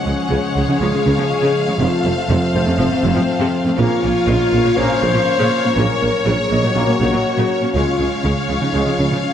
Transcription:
Already playing: F3 G#3 C#4 G#4 C#5 F#5
0.06 C#2 C#3 G#3
0.31 C#2 C#3
0.56 C#2 C#3 F3 G#3
0.68 C#3
0.81 C#2 C#3 F3 G#3 G#4 F5
0.93 C#3 F3 G#3
1.05 C#2 C#3
1.18 C#3 F3 C#4
1.30 F5
1.43 C#3
1.68 C#3 G#3
1.79 F1 F2 C3 F3 A3 C4 F4 A4 C5 F5
2.05 F1 F2 A3 C4
2.29 F1 F2 C3 F3 F4
2.54 F1 F2 A3 C4 C5
2.66 F2 C3 F3 C#4
2.79 F1 F2 F3 C4
2.91 F2 A3
3.03 F1 F2 C3 F3
3.16 F2 F3 F4
3.41 F2 C3 F3
3.66 F2 A3 C4
3.78 A#1 A#2 C#3 A#3 C#4 F4 A#4 C#5 F5
4.02 A#1 A#2 A#3 F4
4.27 A#1 A#2 C#3 A#3 D#5
4.52 A#1 A#2 A#3 C#4
4.65 A#2 C#3 A#3
4.76 A#1 A#2 C#3 F3 A#3 C#4 F4 C5 C#5
4.90 A#2 A#3 C#4
5.02 A#1 A#2 C#3 A#3
5.14 A#2 F3 A#4
5.39 A#2 C#3 A#3
5.64 A#2 A#3 F4
5.76 A#1 A#2 C#3 F#3 A#3 A#4 C#5
6.01 A#1 A#2 A#3 C#4
6.26 A#1 A#2 C#3 F#3 G#4
6.50 A#1 A#2 A#3 D#5
6.62 A#2 C#3 F#3 F#4
6.75 A#1 A#2 C#3 F#3 A#3 C#4 F#4
6.87 A#2 A#3
7.00 A#1 A#2 C#3 F#3
7.12 A#2 F#3 F#4
7.37 A#2 C#3 F#3
7.62 A#2 A#3 C#4
7.74 C#2 C#3 G#3 F4 C#5 F5
7.99 C#2 C#3 G#3
8.24 C#2 C#3 C#4
8.49 C#2 C#3 F3 G#3
8.61 C#3 D#4
8.74 C#2 C#3 F3 G#3 F4 G#4
8.87 C#3 F3 G#3
8.99 C#2 C#3
9.11 C#3 F3 C#4
9.24 C#4

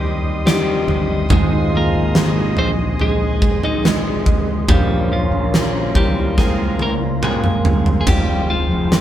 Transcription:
Already playing: D#2 G3 C4 D#4 G4 A#4 D#5 C6 D#6
0.03 D#3 C4 D#4 G4
0.24 C4 D#4 G4
0.45 C3 D#3 G3 C4 D#4 F#4 G4, snare
0.53 G4
0.87 G1 D#3 C4 D#4 G4, floor tom
1.29 G#1 G#2 D#3 F3 G#3 C4 D#4 F4 G#4 D#5, kick, floor tom
1.50 G#3 C4 D#4 G#4
1.71 G#3 C4 D#4 G#4
1.76 A#3 A#4
1.94 G#1
2.15 G#2 D#3 G#3 C4 D#4 G#4, snare
2.56 A#1 G#3 C4 D#4 G#4 C5, floor tom
2.77 G#3 C4 D#4 G#4
3.00 G#3 C4 D#4 G#4, floor tom
3.18 G#3 C4 D#4 G#4
3.40 D#3 G#3 C4 D#4 G#4, kick
3.62 G#3 C4 D#4 G#4 D#5, floor tom
3.82 G#2 D#3 G#3 C4 D#4 G#4, snare
4.25 G#1 G#3 C4 D#4 G#4, kick, floor tom
4.68 A#1 A#2 F3 G3 A#3 C4 C#4 F4 G4 A#4 C5 F5 A#5 C6, kick, floor tom
4.89 C4 C#4 F4
5.10 F3 C#4 F4
5.32 A#1
5.53 A#2 F3 A#3 C#4 F4 C5, snare
5.95 C2 F3 G3 C4 C#4 F4 G4, kick, floor tom
6.16 C#4 F4
6.38 G#3 A#3 C#4 G#4 C5 G5, kick, snare
6.58 C4 C#4 F4
6.79 F3 A#3 C4 C#4 F4 A#4, high tom
7.01 C4 C#4 F4
7.21 A#2 F3 G#3 A#3 C4 C#4 F4 G#4 G5, mid tom
7.44 mid tom
7.65 G1 F3 C4 C#4 F4, floor tom
7.86 floor tom
8.01 G#4
8.06 F1 F2 C3 F3 G3 G#3 C4 F4 G4 G#4 G5, kick, floor tom, crash
8.27 G3 G#3 C4 F4
8.50 F3 G#3 C4 F4
8.71 F1
8.91 F2 C3 G#3 C4 F4 A#4, snare

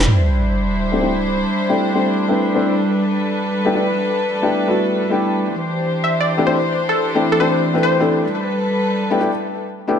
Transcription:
0.07 G3 D4 E4 C5, sub drop
0.92 A3 C4 D4 E4 G4
1.00 A3 C4 D4 E4 G4
1.69 A3 C4 D4 E4 G4
1.94 A3 C4 D4 E4 G4
2.28 A3 C4 D4 E4 B4
2.54 A3 C4 D4 E4 A4
2.80 A4 B4
3.65 A3 B3 D4 E4 G4
3.73 A3 B3 D4 E4 G4
4.42 A3 B3 D4 E4 G4
4.67 A3 B3 D4 E4 F#4
5.09 A3 B3 D4 E4 G4
5.52 E3 D4 G4 C5
6.04 E5
6.21 D5
6.37 A3 C4 D4 E4 G4
6.46 A3 C4 D4 E4 G4 C5
6.89 A4
7.15 A3 C4 D4 E4 G4
7.32 A4
7.39 A3 C4 D4 E4 G4 C5
7.74 A3 C4 D4 E4 B4
7.83 C5
8.00 A3 C4 D4 E4 A4
8.25 G3 A4 B4
9.10 A3 B3 D4 E4 G4
9.19 A3 B3 D4 E4 G4
9.87 A3 B3 D4 E4 G4

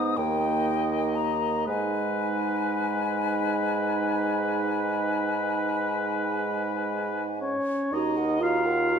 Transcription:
Already playing: G#2 B3 D#4 D#6
0.17 D#2 A#3 D#4 D#5 G5
1.15 A#5
1.66 G#2 G#3 D#4 B4 G#5
7.40 C#4 C#5
7.92 D#2 D#4 F#4 D#5 A#5
8.17 A#4 F#5
8.41 F4 F#4 F5 A#5
8.66 A#4 F#5
8.90 F#4 A#5

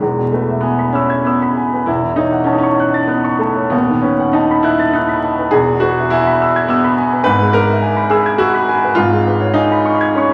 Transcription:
0.01 E1 E2 G#3
0.19 B2
0.32 A3 B4
0.50 E5
0.61 B3 G#5
0.79 B5
0.92 C#4 E6
1.10 G#6
1.25 B3 E6
1.42 B5
1.57 G#5
1.74 B4
1.86 E1 E2 E4
2.03 E3
2.16 D#4 C#5
2.32 F#5
2.44 C#4 A5
2.53 D#4
2.58 C#4
2.63 C#6
2.80 F#6
2.94 A6
3.07 B3 F#6
3.24 C#6
3.39 A3 A5
3.56 C#5
3.70 D#1 D#2 B3
3.90 D#3
4.02 C#4 B4
4.19 F#5
4.33 D#4 A5
4.51 B5
4.63 E4 F#6
4.79 A6
4.93 D#4 F#6
5.08 B5
5.23 A5
5.39 B4
5.51 E1 E2 G#4
5.69 B2
5.80 F#4 B4
5.98 E5
6.10 E4 G#5
6.27 B5
6.42 E6
6.56 G#6
6.68 B3 E6
6.84 B5
6.98 G#5
7.13 B4
7.24 G#1 G#2 B4
7.41 G#3
7.53 A#4 B4
7.70 E5
7.82 G#5
7.97 B5
8.10 G#4 E6
8.26 G#6
8.38 F#4 E6
8.54 B5
8.69 G#5
8.84 B4
8.95 G#1 G#2 F4
9.13 G#3
9.27 B4
9.41 C#5
9.54 D#4 G#5
9.72 B5
9.85 C#6
10.01 G#6
10.15 C#4 C#6

